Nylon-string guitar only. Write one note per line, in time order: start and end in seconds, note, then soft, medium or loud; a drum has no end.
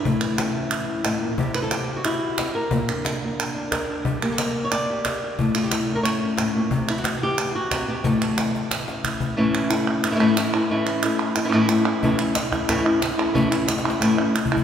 0.00 1.02 A2 medium
0.00 0.57 E4 medium
0.21 1.36 E3 medium
0.38 0.86 C#4 soft
0.54 1.36 A3 soft
0.72 1.38 E4 medium
0.87 1.36 C#4 soft
1.04 1.21 A2 medium
1.21 1.37 A#2 medium
1.38 2.69 C3 medium
1.38 1.52 G3 soft
1.38 2.38 C4 soft
1.38 1.96 E4 medium
1.54 2.69 G3 medium
1.54 1.62 B4 loud
1.62 1.72 A4 medium
1.72 2.05 G4 loud
1.96 2.38 F#4 medium
2.05 2.54 E4 loud
2.39 2.70 C4 soft
2.55 3.22 A#4 medium
2.72 2.88 A#2 medium
2.88 4.21 D3 medium
3.06 3.53 D4 soft
3.22 4.03 A#3 soft
3.40 3.70 A#4 soft
3.55 3.88 D4 soft
3.71 4.03 A#4 soft
3.89 4.03 D4 soft
4.04 5.36 G3 medium
4.22 5.36 A#3 medium
4.22 4.32 G4 medium
4.32 4.40 A4 medium
4.40 4.89 A#4 loud
4.64 4.71 C#5 loud
4.72 5.38 D5 loud
4.90 5.05 G4 soft
5.06 5.22 G4 soft
5.24 5.37 G4 soft
5.39 6.37 A2 medium
5.55 6.87 A3 medium
5.55 5.63 F4 medium
5.63 5.72 G4 medium
5.72 6.30 A4 loud
5.90 6.22 C#4 soft
5.95 6.03 A#4 medium
6.03 6.71 C#5 loud
6.23 6.70 C#4 soft
6.38 6.55 A2 medium
6.55 6.71 A#2 medium
6.72 6.88 C3 medium
6.88 8.20 E3 medium
6.88 6.98 E4 medium
6.98 7.22 F#4 medium
7.23 7.55 G4 loud
7.55 7.88 F#4 medium
7.71 7.87 C3 medium
7.87 8.04 B2 medium
7.87 8.05 G4 medium
8.04 9.36 A2 medium
8.04 9.04 A4 loud
8.21 9.35 E3 medium
8.88 9.35 C#4 soft
9.05 9.37 E4 medium
9.37 9.69 A2 medium
9.37 9.70 E3 medium
9.37 9.70 A3 medium
9.37 9.70 C#4 medium
9.37 9.69 E4 medium
9.70 10.02 A3 soft
9.70 10.03 C#4 medium
9.70 10.03 E4 medium
10.03 10.10 E3 medium
10.03 10.10 A3 medium
10.03 10.10 C#4 medium
10.03 muted nylon-string guitar stroke medium
10.11 10.14 E3 medium
10.11 10.14 A3 medium
10.11 10.15 C#4 medium
10.11 10.15 E4 medium
10.15 10.19 E3 medium
10.15 10.19 A3 medium
10.15 10.19 C#4 loud
10.15 10.20 E4 medium
10.20 10.36 A2 medium
10.20 10.35 E3 medium
10.20 10.36 A3 medium
10.20 10.36 C#4 loud
10.20 10.36 E4 medium
10.37 10.52 E3 medium
10.37 10.53 A3 medium
10.37 10.53 C#4 medium
10.37 10.53 E4 medium
10.54 10.70 A3 soft
10.54 10.70 C#4 soft
10.54 10.69 E4 medium
10.70 11.02 A2 medium
10.70 11.02 E3 medium
10.70 11.03 A3 medium
10.70 11.03 C#4 medium
10.70 11.02 E4 medium
11.03 11.35 A3 medium
11.03 11.35 C#4 soft
11.03 11.36 E4 medium
11.36 muted nylon-string guitar stroke medium
11.44 11.47 E3 medium
11.44 11.47 A3 medium
11.44 11.48 C#4 medium
11.44 11.48 E4 medium
11.48 11.52 E3 medium
11.48 11.53 A3 medium
11.48 11.53 C#4 medium
11.48 11.53 E4 medium
11.53 11.69 A2 loud
11.53 11.68 E3 medium
11.53 11.69 A3 loud
11.53 11.69 C#4 loud
11.53 11.69 E4 loud
11.69 11.85 E3 medium
11.69 11.85 A3 medium
11.69 11.85 C#4 medium
11.69 11.84 E4 medium
11.86 12.02 A3 soft
11.86 12.02 C#4 soft
11.86 12.02 E4 medium
12.03 12.18 A2 medium
12.03 12.19 E3 medium
12.03 12.19 A3 medium
12.03 12.18 C#4 medium
12.03 12.17 E4 medium
12.19 12.34 A3 soft
12.19 12.35 C#4 medium
12.19 12.35 E4 medium
12.35 muted nylon-string guitar stroke medium
12.51 12.68 A3 soft
12.51 12.68 C#4 soft
12.51 12.68 E4 medium
12.68 12.84 A2 medium
12.68 12.85 E3 loud
12.68 12.85 A3 medium
12.68 12.85 C#4 loud
12.68 12.84 E4 loud
12.85 13.01 A3 medium
12.85 13.01 C#4 soft
12.85 13.01 E4 medium
13.01 muted nylon-string guitar stroke medium
13.18 13.33 A3 soft
13.18 13.34 C#4 soft
13.18 13.34 E4 medium
13.34 13.50 A2 medium
13.34 13.50 E3 medium
13.34 13.51 A3 medium
13.34 13.51 C#4 loud
13.34 13.50 E4 medium
13.51 13.67 A3 soft
13.51 13.67 C#4 medium
13.51 13.67 E4 medium
13.68 muted nylon-string guitar stroke medium
13.84 14.01 A3 medium
13.84 14.01 C#4 soft
13.84 14.00 E4 medium
14.01 14.17 A2 medium
14.01 14.17 E3 medium
14.01 14.18 A3 medium
14.01 14.17 C#4 medium
14.01 14.16 E4 loud
14.18 14.34 A3 soft
14.18 14.34 C#4 medium
14.18 14.34 E4 medium
14.34 muted nylon-string guitar stroke medium
14.52 14.64 A3 soft
14.52 14.64 C#4 soft
14.52 14.64 E4 soft